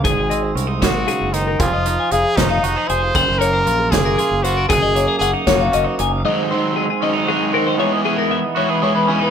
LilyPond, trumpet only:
\new Staff \with { instrumentName = "Trumpet" } { \time 6/8 \key aes \mixolydian \tempo 4. = 77 aes'4 r8 ges'4 ees'8 | f'4 aes'8 ees'4 c''8~ | c''8 bes'4 aes'4 ges'8 | aes'4 aes'8 ges'4 r8 |
r2. | r2. | }